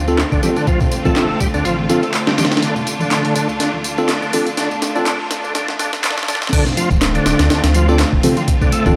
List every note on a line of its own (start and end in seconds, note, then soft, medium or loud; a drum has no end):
0.00 0.24 D2 medium
0.00 6.49 D3 medium
0.00 6.49 A3 medium
0.00 2.59 C4 medium
0.00 6.49 F4 medium
0.08 0.19 C4 medium
0.08 0.19 F4 medium
0.08 0.19 A4 loud
0.08 tambourine soft
0.18 snare loud
0.18 clap loud
0.18 closed hi-hat medium
0.18 tambourine soft
0.32 0.39 F1 loud
0.32 0.42 D3 medium
0.32 kick medium
0.32 tambourine soft
0.43 0.50 G3 medium
0.43 0.56 C4 medium
0.43 0.56 F4 medium
0.43 0.56 A4 medium
0.43 open hi-hat medium
0.43 tambourine medium
0.43 high conga medium
0.56 0.66 D3 loud
0.56 closed hi-hat soft
0.56 tambourine soft
0.67 0.79 F3 loud
0.67 kick loud
0.67 closed hi-hat medium
0.67 tambourine soft
0.80 kick loud
0.80 tambourine soft
0.80 low conga loud
0.92 closed hi-hat medium
0.92 tambourine medium
1.05 1.34 D1 loud
1.05 1.15 A3 medium
1.05 1.24 C4 medium
1.05 1.24 F4 medium
1.05 1.24 A4 loud
1.05 kick medium
1.05 tambourine soft
1.05 high conga loud
1.16 1.39 A3 medium
1.16 snare loud
1.16 clap loud
1.16 closed hi-hat medium
1.16 tambourine soft
1.40 1.49 D1 medium
1.40 1.48 G3 medium
1.40 kick medium
1.40 closed hi-hat medium
1.40 tambourine medium
1.54 1.61 D2 loud
1.54 1.64 D3 loud
1.54 tambourine soft
1.65 1.91 A1 medium
1.65 1.77 F3 loud
1.65 closed hi-hat medium
1.65 tambourine soft
1.79 high conga medium
1.89 1.98 D1 medium
1.89 2.01 F3 medium
1.89 2.03 C4 medium
1.89 2.03 F4 medium
1.89 2.03 A4 loud
1.89 snare soft
1.89 closed hi-hat medium
1.89 tambourine medium
2.03 2.13 A3 medium
2.03 closed hi-hat soft
2.03 tambourine soft
2.14 clap loud
2.14 closed hi-hat medium
2.14 tambourine soft
2.27 2.33 G3 medium
2.27 snare loud
2.27 tambourine soft
2.38 2.45 G3 medium
2.38 snare medium
2.38 closed hi-hat medium
2.38 tambourine medium
2.38 high conga medium
2.45 snare loud
2.45 closed hi-hat medium
2.52 snare medium
2.52 closed hi-hat medium
2.52 tambourine soft
2.57 snare medium
2.57 closed hi-hat medium
2.63 2.75 D3 medium
2.63 6.49 D4 medium
2.63 snare medium
2.63 closed hi-hat medium
2.63 tambourine soft
2.76 tambourine soft
2.76 low conga medium
2.87 closed hi-hat medium
2.87 tambourine medium
2.99 3.29 D1 medium
2.99 3.24 D3 medium
2.99 tambourine soft
2.99 high conga loud
3.11 snare medium
3.11 clap loud
3.11 closed hi-hat medium
3.11 tambourine soft
3.25 3.34 D3 medium
3.25 closed hi-hat soft
3.35 3.44 D1 medium
3.35 3.48 D3 medium
3.35 closed hi-hat medium
3.35 tambourine medium
3.49 3.59 D2 loud
3.49 tambourine soft
3.60 3.71 D2 soft
3.60 3.72 D3 medium
3.60 snare medium
3.60 closed hi-hat medium
3.60 tambourine soft
3.73 4.14 D2 medium
3.73 high conga medium
3.84 closed hi-hat medium
3.84 tambourine medium
3.98 4.21 D3 medium
3.98 4.09 C4 medium
3.98 4.09 F4 medium
3.98 4.09 A4 loud
3.98 tambourine soft
4.09 snare medium
4.09 clap loud
4.09 closed hi-hat medium
4.09 tambourine soft
4.22 4.29 F1 loud
4.22 4.32 D3 medium
4.22 tambourine soft
4.32 4.45 D3 medium
4.32 4.47 C4 medium
4.32 4.47 F4 medium
4.32 4.47 A4 medium
4.32 open hi-hat medium
4.32 tambourine medium
4.32 high conga medium
4.47 closed hi-hat soft
4.47 tambourine soft
4.57 4.70 D3 medium
4.57 snare medium
4.57 closed hi-hat medium
4.57 tambourine soft
4.71 tambourine soft
4.71 low conga medium
4.82 snare medium
4.82 closed hi-hat medium
4.82 tambourine medium
4.95 5.24 D1 loud
4.95 5.05 D3 medium
4.95 5.14 C4 medium
4.95 5.14 F4 medium
4.95 5.14 A4 loud
4.95 tambourine soft
4.95 high conga loud
5.06 5.18 D3 medium
5.06 snare medium
5.06 clap loud
5.06 closed hi-hat medium
5.06 tambourine soft
5.31 5.39 D1 medium
5.31 snare medium
5.31 closed hi-hat medium
5.31 tambourine medium
5.44 5.51 D2 loud
5.44 5.53 D3 medium
5.44 tambourine soft
5.55 5.81 A1 medium
5.55 5.67 D3 medium
5.55 snare medium
5.55 closed hi-hat medium
5.55 tambourine soft
5.68 snare medium
5.68 high conga medium
5.79 5.88 D1 medium
5.79 5.92 D3 medium
5.79 snare medium
5.79 closed hi-hat medium
5.79 tambourine medium
5.93 snare medium
5.93 closed hi-hat soft
5.93 tambourine soft
6.04 6.16 D3 medium
6.04 snare loud
6.04 clap loud
6.04 closed hi-hat medium
6.04 tambourine soft
6.11 snare medium
6.17 snare medium
6.17 tambourine soft
6.23 snare medium
6.28 6.40 D3 medium
6.28 snare loud
6.28 closed hi-hat medium
6.28 tambourine medium
6.28 high conga loud
6.35 snare loud
6.42 snare loud
6.42 tambourine soft
6.47 snare loud
6.53 6.65 D3 medium
6.53 8.96 D3 medium
6.53 8.96 A3 medium
6.53 8.96 C4 medium
6.53 8.96 F4 medium
6.53 kick loud
6.53 closed hi-hat medium
6.53 crash medium
6.53 tambourine soft
6.66 snare soft
6.66 tambourine soft
6.66 low conga medium
6.77 6.89 F3 loud
6.77 closed hi-hat medium
6.77 tambourine medium
6.91 7.19 D1 loud
6.91 kick medium
6.91 tambourine soft
6.91 high conga medium
7.02 snare loud
7.02 clap loud
7.02 closed hi-hat medium
7.02 tambourine soft
7.15 7.49 D3 loud
7.15 closed hi-hat soft
7.26 7.34 D1 medium
7.26 snare loud
7.26 closed hi-hat medium
7.26 tambourine medium
7.39 7.50 D2 loud
7.39 snare loud
7.39 closed hi-hat medium
7.39 tambourine soft
7.50 7.61 D2 soft
7.50 7.62 D3 medium
7.50 snare loud
7.50 closed hi-hat medium
7.50 tambourine soft
7.64 8.04 D2 medium
7.64 snare loud
7.64 closed hi-hat medium
7.64 tambourine soft
7.64 high conga medium
7.75 7.87 F3 loud
7.75 closed hi-hat medium
7.75 tambourine medium
7.88 7.99 C4 medium
7.88 7.98 D4 medium
7.88 7.99 F4 medium
7.88 7.99 A4 loud
7.88 tambourine soft
7.99 snare loud
7.99 clap loud
7.99 closed hi-hat medium
7.99 tambourine soft
8.13 8.19 F1 loud
8.13 kick loud
8.23 8.36 C3 medium
8.23 8.37 C4 medium
8.23 8.37 F4 medium
8.23 8.37 A4 medium
8.23 open hi-hat medium
8.23 tambourine medium
8.23 high conga loud
8.37 8.43 F3 medium
8.37 closed hi-hat soft
8.37 tambourine soft
8.48 kick loud
8.48 closed hi-hat medium
8.48 tambourine soft
8.62 8.72 D3 loud
8.62 kick loud
8.62 tambourine soft
8.62 low conga medium
8.72 8.85 A3 medium
8.72 closed hi-hat medium
8.72 tambourine medium
8.86 8.96 D1 medium
8.86 8.96 D3 loud
8.86 8.96 C4 medium
8.86 8.96 F4 medium
8.86 8.96 A4 loud
8.86 kick medium
8.86 tambourine soft
8.86 high conga loud